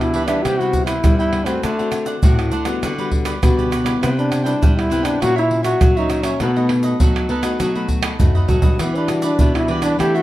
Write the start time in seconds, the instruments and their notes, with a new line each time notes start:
Already playing: nylon-string guitar B2 B3 D4 G4, cavaquinho D4 G4 B4 E5
0.00 trombone E4, pandeiro, tamborim, shaker
0.14 nylon-string guitar E3, cavaquinho D4 G4 B4 E5, pandeiro
0.26 nylon-string guitar G3 B3 E4, trombone D4, cavaquinho G4 B4 E5, pandeiro, tamborim, shaker
0.44 nylon-string guitar C3, cavaquinho E4 B4 C5, trombone G4, pandeiro, tamborim, shaker, surdo
0.48 cavaquinho G5
0.59 nylon-string guitar G3 B3 E4, trombone F#4, cavaquinho B4 C5 G5, pandeiro, shaker
0.73 muted cavaquinho stroke, pandeiro, shaker, surdo
0.86 trombone E4, cavaquinho B4 C5 G5, pandeiro, tamborim, shaker
1.04 nylon-string guitar G2 G3 B3 E4, pandeiro, tamborim, shaker, surdo
1.18 trombone E4, cavaquinho B4 C5 G5, pandeiro, shaker
1.32 cavaquinho E4 B4 C5 G5, pandeiro, tamborim
1.45 nylon-string guitar A3 C4 F#4, trombone C4, cavaquinho B4 C5 G5, pandeiro, tamborim, shaker
1.63 nylon-string guitar D3, trombone A3, cavaquinho D4 C5 D5 F#5, pandeiro, tamborim, shaker, surdo
1.79 nylon-string guitar A3 C4 F#4, cavaquinho C5 D5 F#5, pandeiro, shaker
1.92 muted cavaquinho stroke, pandeiro, tamborim, shaker
2.06 cavaquinho C5 D5 F#5, pandeiro, shaker
2.23 nylon-string guitar A2 A3 C4 F#4, cavaquinho D4 C5 D5 F#5, pandeiro, shaker, surdo
2.39 pandeiro, tamborim, shaker
2.51 nylon-string guitar D3, cavaquinho D4 C5 D5 F#5, pandeiro, shaker
2.65 nylon-string guitar G3 B3 F#4, cavaquinho C5 D5 F#5, pandeiro, tamborim, shaker
2.82 nylon-string guitar D3, cavaquinho F#4 G4 B4 D5, pandeiro, tamborim, shaker, surdo
2.98 nylon-string guitar G3 B3 F#4, cavaquinho G4 B4 D5, pandeiro, shaker
3.11 muted cavaquinho stroke, pandeiro, surdo
3.25 cavaquinho G4 B4 D5, pandeiro, tamborim, shaker
3.42 nylon-string guitar B2 D3 G3 B3 F#4, pandeiro, tamborim, shaker, surdo
3.57 cavaquinho G4 B4 D5, pandeiro, shaker
3.70 cavaquinho F#4 G4 B4 D5, pandeiro, tamborim, shaker
3.84 nylon-string guitar G3 B3 E4, cavaquinho G4 B4 D5, pandeiro, tamborim, shaker
4.01 nylon-string guitar C3, trombone B3, cavaquinho E4 B4 C5 G5, pandeiro, tamborim, shaker, surdo
4.17 trombone D4, cavaquinho B4 C5 G5, pandeiro, shaker
4.30 muted cavaquinho stroke, pandeiro, tamborim, shaker
4.44 nylon-string guitar G3 B3 E4, trombone D4, cavaquinho B4 C5 G5, pandeiro, shaker
4.61 nylon-string guitar G2 G3, cavaquinho E4 B4 C5 G5, pandeiro, shaker, surdo
4.78 trombone E4, pandeiro, tamborim, shaker
4.90 nylon-string guitar C3 G3 B3 E4, cavaquinho E4 B4 C5 G5, pandeiro, shaker
5.03 trombone D4, cavaquinho B4 C5 G5, pandeiro, tamborim, shaker
5.20 nylon-string guitar A#2 F#3 C#4 E4, cavaquinho F#4 A#4 C#5 E5, trombone F#4, pandeiro, tamborim, shaker, surdo
5.36 trombone E4, cavaquinho A#4 C#5 E5, pandeiro, shaker
5.50 nylon-string guitar F#3 C#4 E4, muted cavaquinho stroke, pandeiro
5.63 trombone F#4, cavaquinho A#4 C#5 E5, pandeiro, tamborim, shaker
5.81 nylon-string guitar A#2 F#3, pandeiro, tamborim, shaker, surdo
5.97 nylon-string guitar F#3 C#4, trombone D#4, cavaquinho A#4 C#5 E5, pandeiro, shaker
6.09 cavaquinho F#4 A#4 C#5 E5, pandeiro, tamborim, shaker
6.24 trombone C#4, cavaquinho A#4 C#5 E5, pandeiro, tamborim, shaker
6.40 nylon-string guitar B2 A3 D#4 F#4, trombone B3, cavaquinho D#4 A4 B4 D#5, pandeiro, tamborim, shaker, surdo
6.56 nylon-string guitar A3 D#4 F#4, cavaquinho A4 B4 D#5, pandeiro, shaker
6.69 muted cavaquinho stroke, pandeiro, tamborim
6.83 cavaquinho A4 B4 D#5, pandeiro, shaker
7.00 nylon-string guitar F#3 A3 D#4 F#4, cavaquinho D#4 A4 B4 D#5, pandeiro, shaker, surdo
7.16 pandeiro, tamborim, shaker
7.29 nylon-string guitar B3, cavaquinho D#4 A4 B4 D#5, pandeiro
7.43 nylon-string guitar A3 D#4 F#4, cavaquinho A4 B4 D#5, pandeiro, tamborim, shaker
7.60 nylon-string guitar B2 F#3, cavaquinho D#4 A4 B4 D#5, pandeiro, tamborim, shaker, surdo
7.75 nylon-string guitar A3 D#4 F#4, cavaquinho A4 B4 D#5, pandeiro, shaker
7.88 muted cavaquinho stroke, pandeiro, shaker, surdo
8.02 cavaquinho A4 B4 D#5, pandeiro, tamborim, shaker
8.19 nylon-string guitar F#3 A3 D#4 F#4, surdo, pandeiro, shaker
8.35 cavaquinho A4 B4 D#5, surdo, pandeiro, shaker
8.48 nylon-string guitar F#3, cavaquinho D#4 A4 B4 D#5, pandeiro, shaker, surdo
8.62 nylon-string guitar G3 D4 F#4, cavaquinho A4 B4 D#5, pandeiro, shaker, surdo
8.79 nylon-string guitar E3, trombone B3, cavaquinho E4 G4 B4 D5, pandeiro, tamborim, shaker, surdo
8.95 trombone D4, cavaquinho G4 B4 D5, pandeiro, shaker
9.07 nylon-string guitar G3 D4 F#4, muted cavaquinho stroke, pandeiro, tamborim, shaker
9.22 trombone D4, cavaquinho G4 B4 D5, pandeiro, shaker
9.38 nylon-string guitar B2, cavaquinho E4 G4 B4, pandeiro, shaker, surdo
9.42 cavaquinho D5
9.54 nylon-string guitar G3 D4 F#4, trombone E4, pandeiro, tamborim, shaker
9.68 nylon-string guitar E3, cavaquinho E4 G4 B4 D5, pandeiro
9.82 trombone D4, cavaquinho G4 B4 D5, pandeiro, tamborim, shaker
9.98 nylon-string guitar E3 A3 D4 E4, cavaquinho E4 A4 C5 E5, trombone G4, pandeiro, tamborim, shaker, surdo
10.14 trombone F#4, cavaquinho A4 C5 E5, pandeiro, shaker